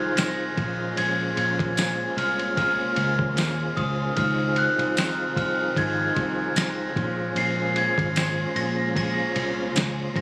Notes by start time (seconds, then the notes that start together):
Already playing: D#3 F3 C4 D#4 F4 G#4 C5 G#6
0.16 C2 C4 D#4 G#4 C5 A#6, snare, ride, tambourine
0.55 A#1 A#2 G#3 A#3 C#4 F4 G#4 C5, kick, ride
0.59 G#3 C5
0.95 A#1 A#2 F3 G#3 C#4 G#4 C5 G#6, ride
1.36 A#1 G#3 C#4 G#4 C5 G#6, ride
1.59 kick, ride
1.76 G#3 C#4 G#4 C5, snare, ride, tambourine
2.16 C2 G#3 C#4 G#4 C5 F6, ride
2.39 ride
2.56 A#2 F3 G#3 C#4 G#4 C5 F6, kick, snare, ride
2.96 C#2 G#3 C#4 G#4 C5, ride
3.19 kick
3.35 D#2 G#3 C#4 G#4 C5, snare, ride, tambourine
3.76 C#2 G#3 C#4 G#4 C5 D#6, kick, ride
4.15 C#2 C#3 D#3 F3 C4 D#4 F4 G#4 F6, kick, ride
4.19 C5
4.56 C4 D#4 G#4 C5 F#6, ride
4.79 C2, ride
4.96 C4 D#4 G#4 C5, snare, ride, tambourine
5.35 C2 C4 D#4 G#4 C5 F6, kick, ride
5.75 G#1 C#3 F3 C4 D#4 G#4 C5 G#6, kick, ride
6.15 C2 C4 D#4 G#4 C5, kick, ride
6.56 C2 C4 D#4 G#4 C5 A#6, snare, ride, tambourine
6.93 A#1 A#2 G#3 A#3 C#4 F4 G#4 C5, kick, ride
6.98 G#3 C#4 C5
7.35 A#1 A#2 F3 G#3 C#4 G#4 C7, ride
7.39 C5
7.76 G#3 C#4 G#4 C5 G#6, ride
7.98 G#1, kick, ride
8.16 G#3 C#4 G#4 C5, snare, ride, tambourine
8.55 A#1 G#3 C#4 G#4 C5 A#6, ride
8.95 A#2 F3 G#3 C#4 G#4 C5 A#6, kick, ride
9.35 C2 G#3 C#4 G#4 C5, ride
9.75 C#2 G#3 C#4 G#4 C5, snare, ride, tambourine
10.15 A#1 G#3 C#4 G#4 C5 A#6, kick, ride